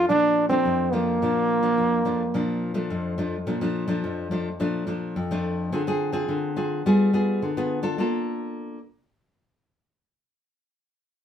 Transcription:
0.09 A#2 F3 A3 D4
0.49 F3 A3 C4 D4
0.65 F2
0.93 F3 A3 A#3 D4
1.22 A#2 F3 D4
1.63 F3 D4
1.78 F2
2.05 F3 A3 D4
2.34 A#2 F3 D4
2.74 F3 A3 D4
2.90 F2
3.18 F3 A3 D4
3.47 A#2 F3 A3 D4
3.61 F3 A3 D4
3.88 F3 A3 D4
4.04 F2
4.31 F3 A3 D4
4.60 A#2 F3 A3 D4
4.87 F3 A3 D4
5.16 F2
5.31 F3 A3 D4
5.72 D3 C4 F4 G#4
5.87 C4 F4 G#4
6.13 C4 F4 G#4
6.28 D3
6.56 C4 F4 G#4
6.86 G3 B3 F4 G#4
7.13 B3 F4 G#4
7.42 D3
7.57 B3 F4 G#4
7.83 D4 F4 A4
7.98 A#3 D4 F4 A4

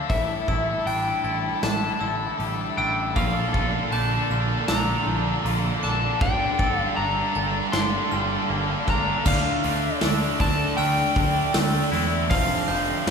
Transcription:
Already playing: A3 C4 F4 D6
0.02 D4 A4
0.09 A1 A2 G3 D4 E4 A4 E5, kick, open hi-hat
0.17 E4 A4
0.23 E4 A4
0.33 E4 A4
0.41 E4 A4
0.48 A1 E4 A4 E6, kick
0.56 E4 A4
0.63 E4 A4
0.71 E4 A4
0.78 E4 A4
0.86 A1 D4 E4 A4 G5, open hi-hat
0.94 E4 A4
1.02 E4 A4
1.08 E4 A4
1.16 E4 A4
1.24 A1 E4 A4 A6
1.31 E4 A4
1.39 E4 A4
1.46 E4 A4
1.54 E4 A4
1.62 A1 D4 E4 A4 A5, snare, open hi-hat
1.70 E4 A4
1.78 E4 A4
1.84 E4 A4
1.92 E4 A4
2.00 A1 D3 E4 A4 E6
2.08 E4 A4
2.16 E4 A4
2.24 E4 A4
2.31 E4 A4
2.38 A1 G3 E4 A4, open hi-hat
2.47 E4 A4
2.54 E4 A4
2.61 E4 A4
2.69 E4 A4
2.77 A1 D4 E4 A4 G5 E6
2.85 E4 A4
2.92 E4 A4
3.00 E4 A4
3.07 E4 A4
3.16 A#1 A#2 D3 A#3 D4 A4 F5 F6, kick, open hi-hat
3.23 A#2 D3 D4 A4
3.31 A#2 D3 D4 A4
3.39 A#2 D3 D4 A4
3.46 A#2 D3 D4 A4
3.53 A#1 A#2 D3 D4 A4, kick
3.61 A#2 D3 D4 A4
3.68 A#2 D3 D4 A4
3.76 A#2 D3 D4 A4
3.83 A#2 D3 D4 A4
3.92 A#1 A#2 D3 D4 A4 A5 G6, open hi-hat
3.99 A#2 D3 D4 A4
4.07 A#2 D3 D4 A4
4.14 A#2 D3 D4 A4
4.22 A#2 D3 D4 A4
4.30 A#1 A#2 D3 D4 A4 F6
4.37 A#2 D3 D4
4.42 A#2 D4 A4
4.46 D3 A4
4.52 A#2 D3 D4
4.58 A#2 D3 D4 A4
4.64 D4 A4
4.68 A#1 A#2 D3 D4 A#5 E6, snare, open hi-hat
4.72 D4 A4
4.76 A#2 D3 A4
4.83 A#2 D3 D4 A4
4.91 A#2 D3 D4
4.96 A#2 D3 D4 A4
5.03 A#1 D4 A4
5.07 A#2 D3 F3
5.12 A#2 D3 D4 A4
5.19 A#2 D3 D4 A4
5.27 A#2 D3 D4 A4
5.36 A#2 D3 D4 A4
5.43 A#1 A#2 D3 A#3 D4 A4, open hi-hat
5.50 A#2 D3 D4 A4
5.58 A#2 D3 D4 A4
5.65 A#2 D3 D4 A4
5.73 A#2 D3 D4 A4
5.82 A#1 A#2 D3 D4 A4 A5 D6, snare
5.89 A#2 D3 D4 A4
5.96 A#2 D3 D4 A4
6.05 A#2 D3 D4 A4
6.12 A#2 D3 D4 A4
6.21 G1 G2 D3 G3 D4 A4 G5, kick
6.27 G2 D3 D4 A4
6.36 G2 D3 D4 A4
6.43 G2 D3 D4 A4
6.51 G2 D3 D4 A4
6.59 G1 G2 D3 D4 A4 E6, kick
6.67 G2 D3 D4 A4
6.74 G2 D3 D4 A4
6.79 G2 D4 A4 F5
6.84 D3
6.89 G2 D3 D4 A4
6.97 G1 G2 D3 D4 A4 A#5
7.05 G2 D3 D4 A4
7.12 G2 D4 A4
7.16 G2 D3 D4 A4
7.23 D3
7.27 G2 D3 D4 A4
7.34 G1 G2 D4 A4 A6
7.39 D3 D4
7.43 G2 D3 A4
7.50 G2 D4 A4
7.55 G2 D3 D4 A4
7.62 G2 D3 D4
7.66 D3 A4
7.72 G1 G2 D4 A4 C6, snare
7.77 D3 D4
7.81 G2 D3 A4
7.88 G2 D3 D4 A4
7.96 G2 D4 A4
8.01 G2 D3 D4
8.05 D3 A4
8.11 G1 G2 G3 D4 A4 F6
8.16 D3 D4 A4
8.20 G2 D3
8.27 G2 D4 A4
8.31 G2 D3 D4 A4
8.38 D3 D4
8.43 G2 A4
8.47 G1 G2 D3 A#3 D4 A4
8.55 G2 D3 D4 A4
8.62 G2 D3 D4 A4
8.70 G2 D3 D4 A4
8.78 G2 D3 D4 A4
8.86 G1 G2 D3 D4 A4 F6, kick, snare
8.90 D3 A#5
8.95 G2 D4 A4
9.01 G2 D3 D4 A4
9.09 G2 D3 D4 A4
9.16 G2 D3 D4 A4
9.25 D2 D3 A3 D4 D5 F5 F6, kick, crash
9.63 D2 D3 A3 D4, open hi-hat
10.01 D2 D3 A3 D4 E6, snare, open hi-hat
10.39 D2 D3 A3 D4 A5, kick, open hi-hat
10.77 D2 D3 A3 D4 G5 F6, open hi-hat
10.97 snare
11.15 D2 D3 A3 D4, kick, open hi-hat
11.53 D2 D3 A3 D4 E6, snare, open hi-hat
11.92 E2 D3 A3 D4 E4, snare, open hi-hat
12.29 F1 F2 C3 F3 A4 F5 F6, kick, open hi-hat
12.67 F1 F2 C3 F3 G6, open hi-hat
13.05 F1 F2 C3 F3 C4

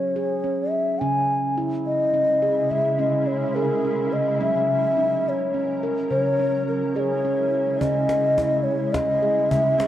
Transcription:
Already playing: F#3 C#4 C#5
0.16 G#4
0.44 C#4
0.70 E5
0.99 C#3 C#4 G#5
1.03 C#3 G#3 E4
1.58 E4
1.86 D#5
2.14 C#4
2.42 G#4
2.71 C#3 E5
2.99 C#4 D#5
3.27 C#5
3.55 G#4 A#4
3.85 C#4
4.13 D#5
4.40 F#3 C#4 A#4 E5
4.97 D#4
5.29 C#5
5.54 C#4
5.83 A#4
6.10 C#3 G#3 E4 C#5
6.40 C#4
6.68 A#4
6.96 G#4 C#5 D#5
7.25 C#4
7.80 C#3 G#3 C#4 E4 D#5, cajon bass
8.09 cajon slap
8.38 E4, cajon bass
8.64 C#5, cajon slap
8.93 C#4 D#5, cajon bass, cajon slap
9.22 G#4, cajon slap
9.50 C#3 E5, cajon bass
9.79 C#4 D#5, cajon slap

